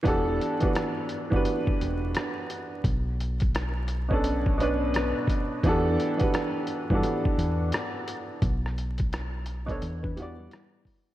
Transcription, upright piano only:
X:1
M:4/4
L:1/16
Q:"Swing 16ths" 1/4=86
K:Edor
V:1 name="Upright piano"
[E,B,DFGA]2 z [E,B,DFGB]3 z [E,B,DFGB]6 z3 | z6 z [B,,B,CDA]2 z [B,,B,CDB]4- [B,,B,CDB] z | [E,B,DFGA]2 z [E,B,DFGB]3 z [E,B,DFGA]6 z3 | z6 z [B,,B,DAc] z2 [E,B,FGd]4- [E,B,FGd] z |]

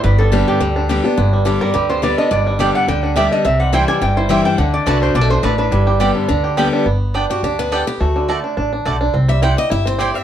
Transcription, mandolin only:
X:1
M:4/4
L:1/8
Q:"Swing" 1/4=211
K:G
V:1 name="Mandolin"
z8 | z8 | z2 [B,Gdg] z3 [B,Gdg] z | z2 [CEcg] z3 [CEcg] z |
z2 [A,Fda] z3 [A,Fda] z | z2 [B,Gdg] z3 [B,Gdg] z | z2 [B,Gdg] z3 [B,Gdg] z | z2 [A,Fda] z3 [A,Fda] z |
z2 [CEcg] z3 [CEcg] z |]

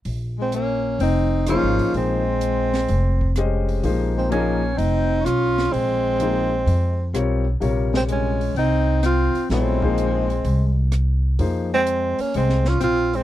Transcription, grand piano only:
X:1
M:4/4
L:1/8
Q:"Swing" 1/4=127
K:Bbdor
V:1 name="Grand piano"
z6 [F,B,EAc]2- | [F,B,EAc] z4 z [A,DGce]2 | [F,B,EAc]2 [F,B,EAe] z4 z | z2 [F,B,EAc] z3 [G,CFBd] z |
[C,G,FBd]3 z4 z | [_G,_C=E=Ad] [F,B,_E_A=c]2 z4 z | [F,B,EAc] z6 z |]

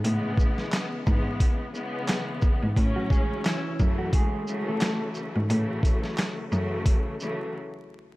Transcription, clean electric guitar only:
X:1
M:4/4
L:1/16
Q:"Swing 16ths" 1/4=88
K:F#m
V:1 name="Clean electric guitar"
z16 | z [F,F] [G,G]2 [E,E]3 [F,F] [G,G]3 [A,A]2 z3 | z16 |]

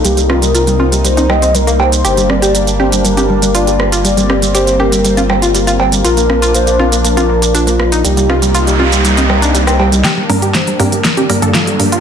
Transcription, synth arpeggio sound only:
X:1
M:4/4
L:1/16
Q:1/4=120
K:Gm
V:1 name="Synth arpeggio sound" clef=bass
G, G, F G, F G, F G, G, E G, C G, B, G, G, | G G, G, G G, G, G G, G, G G, G, F G, G, F | G, G, G G, G G, G G, G, F G, F G, F G, G, | F B, B, F B, B, F B, B, F B, B, D B, B, E |
G, G, F G, F G, F G, G, E G, D G, C G, G, | G G, G, G G, G, G G, G, G G, G, F G, G, F |]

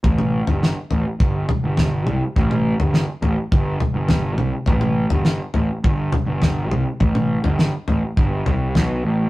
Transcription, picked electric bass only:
X:1
M:4/4
L:1/16
Q:1/4=103
K:Am
V:1 name="Picked electric bass" clef=bass
A,,,3 G,,,2 z A,,, z G,,,2 z G,,,3 C,, z | A,,,3 G,,,2 z A,,, z G,,,2 z G,,,3 C,, z | A,,,3 G,,,2 z A,,, z G,,,2 z G,,,3 C,, z | A,,,3 G,,,2 z A,,, z G,,,2 C,,2 B,,,2 A,,,2 |]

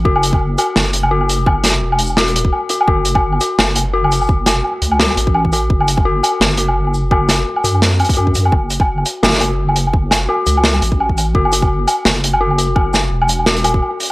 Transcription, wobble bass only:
X:1
M:4/4
L:1/8
Q:"Swing 16ths" 1/4=170
K:F#m
V:1 name="Wobble bass" clef=bass
F,,,3 z F,,,4- | F,,,2 E,,,4 z2 | F,,,3 z F,,,4- | F,,,2 z C,,2 A,,,3 |
F,,,3 z F,,,4- | F,,,2 z F,,4 F,, | F,,,3 z F,,,4- | F,,,2 z C,,2 A,,,3 |
F,,,3 z F,,,4- | F,,,2 E,,,4 z2 |]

